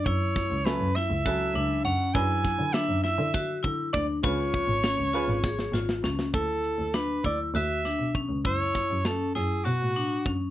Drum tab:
HH |x-x-x-x-x-x-x-|x-x-x-x-x-x-x-|x-x-x-x-------|x-x-x-x-x-x-x-|
SD |--o-o-o-------|--o-o-o-o-----|----o---oooooo|----o-----o---|
BD |o-o-----o-----|o-o-----o-o-o-|o-o-----o-----|o-----o-----o-|

HH |x-x-x-x-x-x-x-|
SD |--o-o-o-------|
BD |o-o---------o-|